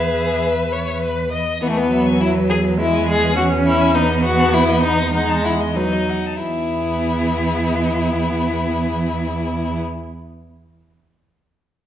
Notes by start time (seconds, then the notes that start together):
Already playing: E2 G#4 B4 E5
0.43 B4
0.72 C#5
1.02 B4
1.32 D#5
1.62 E2 E3 B3 G#4
1.69 A3
1.77 B3 B4
1.91 F#3 E5
2.06 G#5
2.21 E4 E5
2.35 B4
2.50 G#4
2.65 B4
2.78 G#3 E4 E5
2.94 G#5
3.08 G#4 E5
3.22 B4
3.36 C#4 F#4 G#4
3.51 B4
3.66 E4 E5
3.81 G#5
3.95 B3 D#4 B4
4.10 D#5
4.23 F#4 F#5
4.39 A5
4.54 E4 F#5
4.69 D#5
4.83 D#4 B4
4.98 D#5
5.14 G#3 D#4 F#5
5.29 A5
5.45 E4 F#5
5.60 D#5
5.76 F#3 D#4 B4
5.93 D#5
6.09 F#5
6.27 A5
6.42 E2 B3 E4 G#4